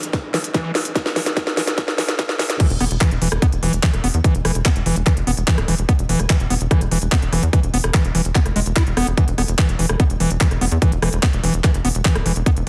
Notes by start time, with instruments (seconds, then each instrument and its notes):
0.03 closed hi-hat
0.13 kick, snare, closed hi-hat
0.34 acid bass E3, snare, open hi-hat
0.44 closed hi-hat
0.54 acid bass E3, kick, snare, closed hi-hat
0.65 acid bass E3
0.75 snare, open hi-hat
0.85 closed hi-hat
0.96 kick, snare, closed hi-hat
1.06 snare
1.16 acid bass E3, snare, open hi-hat
1.26 snare, closed hi-hat
1.37 kick, snare, closed hi-hat
1.47 snare
1.57 acid bass E3, snare, open hi-hat
1.67 snare, closed hi-hat
1.78 acid bass E3, kick, snare, closed hi-hat
1.88 snare
1.98 acid bass E3, snare, open hi-hat
2.09 snare, closed hi-hat
2.19 acid bass E3, kick, snare, closed hi-hat
2.29 snare
2.39 acid bass E3, snare, open hi-hat
2.50 snare, closed hi-hat
2.60 acid bass E3, kick, closed hi-hat, crash
2.70 analog synth bass E1, closed hi-hat
2.81 analog synth bass E1, acid bass B3, cross-stick, open hi-hat
2.91 analog synth bass E1, closed hi-hat
3.01 acid bass E3, kick, clap, closed hi-hat
3.11 analog synth bass E1, closed hi-hat
3.22 analog synth bass E1, acid bass E3, open hi-hat
3.32 analog synth bass E1, cross-stick, closed hi-hat
3.42 acid bass B3, kick, closed hi-hat
3.52 analog synth bass E1, closed hi-hat
3.63 analog synth bass E1, acid bass E3, open hi-hat
3.73 analog synth bass E1, closed hi-hat
3.83 acid bass E3, kick, clap, closed hi-hat
3.94 analog synth bass E1, cross-stick, closed hi-hat
4.04 analog synth bass E1, acid bass B3, open hi-hat
4.14 analog synth bass E2, closed hi-hat
4.24 acid bass E3, kick, closed hi-hat
4.35 analog synth bass E1, closed hi-hat
4.45 analog synth bass E1, acid bass E3, cross-stick, open hi-hat
4.55 analog synth bass E1, closed hi-hat
4.65 acid bass B3, kick, clap, closed hi-hat
4.76 analog synth bass E1, closed hi-hat
4.86 analog synth bass E1, acid bass E3, open hi-hat
4.96 analog synth bass E1, closed hi-hat
5.07 acid bass E3, kick, cross-stick, clap, closed hi-hat
5.17 analog synth bass F1, closed hi-hat
5.27 analog synth bass E1, acid bass B3, open hi-hat
5.37 analog synth bass E1, closed hi-hat
5.48 acid bass E3, kick, clap, closed hi-hat
5.58 analog synth bass D1, cross-stick, closed hi-hat
5.68 analog synth bass E1, acid bass E3, open hi-hat
5.78 analog synth bass E1, closed hi-hat
5.89 acid bass B3, kick, closed hi-hat
5.99 analog synth bass E1, closed hi-hat
6.09 analog synth bass E1, acid bass E3, open hi-hat
6.20 analog synth bass E1, cross-stick, closed hi-hat
6.30 acid bass E3, kick, clap, closed hi-hat
6.40 analog synth bass E1, closed hi-hat
6.50 analog synth bass E1, acid bass B3, open hi-hat
6.61 analog synth bass E1, closed hi-hat
6.71 acid bass E3, kick, cross-stick, closed hi-hat
6.81 analog synth bass E1, closed hi-hat
6.91 analog synth bass E1, acid bass E3, open hi-hat
7.02 analog synth bass E1, closed hi-hat
7.12 acid bass B3, kick, clap, closed hi-hat
7.22 analog synth bass E1, closed hi-hat
7.33 analog synth bass E1, acid bass E3, cross-stick, open hi-hat
7.43 analog synth bass E2, closed hi-hat
7.53 acid bass E3, kick, closed hi-hat
7.63 analog synth bass E1, closed hi-hat
7.74 analog synth bass E1, acid bass B3, open hi-hat
7.84 analog synth bass E1, cross-stick, closed hi-hat
7.94 acid bass E3, kick, clap, closed hi-hat
8.04 analog synth bass E1, closed hi-hat
8.15 analog synth bass E1, acid bass E3, open hi-hat
8.25 analog synth bass E1, closed hi-hat
8.35 acid bass B3, kick, clap, closed hi-hat
8.46 analog synth bass F1, cross-stick, closed hi-hat
8.56 analog synth bass E1, acid bass G#3, open hi-hat
8.66 analog synth bass E1, closed hi-hat
8.76 acid bass E4, kick, clap, closed hi-hat
8.87 analog synth bass E1, closed hi-hat
8.97 analog synth bass E1, acid bass B3, cross-stick, open hi-hat
9.07 analog synth bass E1, closed hi-hat
9.17 acid bass E3, kick, closed hi-hat
9.28 analog synth bass E1, closed hi-hat
9.38 analog synth bass E1, acid bass B3, cross-stick, open hi-hat
9.48 analog synth bass E1, closed hi-hat
9.59 acid bass E3, kick, clap, closed hi-hat
9.69 analog synth bass E1, closed hi-hat
9.79 analog synth bass E1, acid bass E3, open hi-hat
9.89 analog synth bass E1, cross-stick, closed hi-hat
10.00 acid bass B3, kick, closed hi-hat
10.10 analog synth bass E1, closed hi-hat
10.20 analog synth bass E1, acid bass E3, open hi-hat
10.31 analog synth bass E1, closed hi-hat
10.41 acid bass E3, kick, clap, closed hi-hat
10.51 analog synth bass E1, cross-stick, closed hi-hat
10.61 analog synth bass E1, acid bass B3, open hi-hat
10.72 analog synth bass E2, closed hi-hat
10.82 acid bass E3, kick, closed hi-hat
10.92 analog synth bass E1, closed hi-hat
11.02 analog synth bass E1, acid bass E3, cross-stick, open hi-hat
11.13 analog synth bass E1, closed hi-hat
11.23 acid bass B3, kick, clap, closed hi-hat
11.33 analog synth bass E1, closed hi-hat
11.44 analog synth bass E1, acid bass E3, open hi-hat
11.54 analog synth bass E1, closed hi-hat
11.64 acid bass E3, kick, cross-stick, clap, closed hi-hat
11.74 analog synth bass F1, closed hi-hat
11.85 analog synth bass E1, acid bass B3, open hi-hat
11.95 analog synth bass E1, closed hi-hat
12.05 acid bass E3, kick, clap, closed hi-hat
12.15 analog synth bass D1, cross-stick, closed hi-hat
12.26 analog synth bass E1, acid bass E3, open hi-hat
12.36 analog synth bass E1, closed hi-hat
12.46 acid bass B3, kick, closed hi-hat
12.57 analog synth bass E1, closed hi-hat